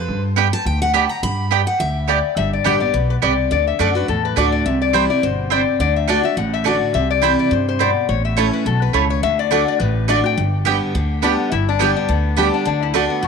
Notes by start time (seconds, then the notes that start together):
Already playing: B4
0.08 G2
0.36 B3 G4 D5 G5
0.53 A5
0.66 D2 G5
0.82 F#5
0.94 B3 G4 D5 G5 A5
1.09 A#5
1.23 G2 B5
1.51 B3 G4 D5 G5
1.67 F#5
1.80 D2 E5
2.08 B3 G4 D5 G5
2.36 G1 G2 E5
2.53 D5
2.64 A1 D3 G3 B3 G4 D5 G5
2.80 B3 G4 D5
2.94 B1 B2 B4
3.10 B4
3.22 C2 C3 B3 G4 D5 G5
3.51 D2 D3 D5
3.67 E5
3.79 F#2 D3 A3 D4 F#4 D5 A5
3.95 D4 F#4 B4
4.08 E2 A2 A4
4.25 B4
4.36 D2 D3 A3 D4 F#4 D5 A5
4.52 D5
4.66 C2 C3 E5
4.82 D5
4.93 E3 G3 C4 E4 C5 G5
5.10 C4 E4 D5
5.23 G1 B2 C5
5.50 C3 C4 E4 C5 D5 G5
5.80 D2 D3 D5
5.96 E5
6.07 D3 A3 D4 F#4 D5 A5
6.23 D4 F#4 E5
6.37 A1 A2 F#5
6.54 E5
6.64 D3 A3 D4 F#4 D5 A5
6.94 C2 C3 E5
7.11 D5
7.22 E3 G3 C4 E4 C5 G5
7.39 D5
7.51 G2 C3 C5
7.69 C5
7.79 B2 C4 E4 C5 D5 G5
8.09 A1 A2 C#5
8.25 E5
8.36 E3 A3 C#4 E4 C#5 A5
8.53 B4
8.66 B1 B2 A4
8.82 B4
8.93 C#2 C#3 A3 E4 C#5 A5
9.10 C#5
9.23 D2 D3 E5
9.39 D5
9.51 D3 A3 D4 F#4 D5 A5
9.68 D5
9.80 A1 A2 B4
10.08 D3 A3 D4 F#4 D5 A5
10.24 D4 F#4 G5
10.37 G1 G2
10.65 D3 G3 B3 G4 D5 G5
10.95 D2 D3
11.22 D3 G3 B3 D4 G4 D5 G5
11.52 G1 G2 E4
11.69 D4
11.79 D3 G3 B3 G4 D5 G5
11.96 D4
12.09 D2 D3 B3
12.37 D3 G3 B3 D4 G4 D5 G5
12.54 D4
12.65 D2 D3 D4
12.83 E4
12.94 D3 A3 D4 F#4 D5 A5
13.10 B3
13.23 A1 A2 A3